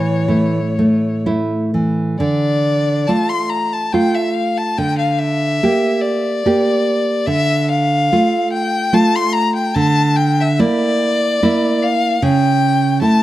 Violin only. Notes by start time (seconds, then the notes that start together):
Already playing: C#5
2.19 D5
3.07 A5
3.29 C6
3.50 A#5
3.73 A5
3.93 G5
4.15 E5
4.34 F5
4.58 A5
4.78 G5
4.98 F5
5.18 E5
6.02 D5
7.26 E5
7.68 F5
8.53 G5
8.94 A5
9.16 C6
9.33 A#5
9.56 G5
9.75 A5
10.16 G5
10.40 E5
10.59 D5
11.83 F5
12.22 G5
13.02 A5